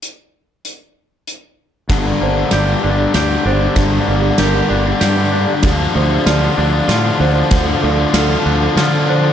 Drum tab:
RD |------|x-x-x-|x-x-x-|x-x-x-|
HH |x-x-x-|------|------|------|
SD |------|o-o-o-|o-o-o-|o-o-o-|
BD |------|o-----|o-----|o-----|

RD |x-x-x-|
HH |------|
SD |o-o-o-|
BD |o-----|